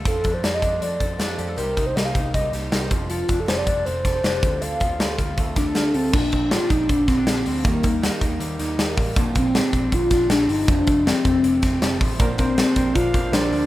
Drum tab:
CC |--------|--------|--------|--------|
HH |xxxxxxxx|xxxxxxxx|xxxxxxxx|xxxxxxxo|
SD |--o---o-|--o--oo-|--o--oo-|--o--oo-|
BD |oo-o-o--|-o-oo--o|-o-o-o-o|-o-ooo--|

CC |x-------|--------|--------|--------|
HH |-xxxxxxo|xxxxxxxo|xxxxxxxo|xxxxxxxo|
SD |--o--oo-|--o--oo-|--o--oo-|--o--oo-|
BD |oo-ooo--|oo-o---o|oo-ooo--|oo-o-o-o|

CC |--------|
HH |xxxxxxxo|
SD |--o---o-|
BD |oo-ooo--|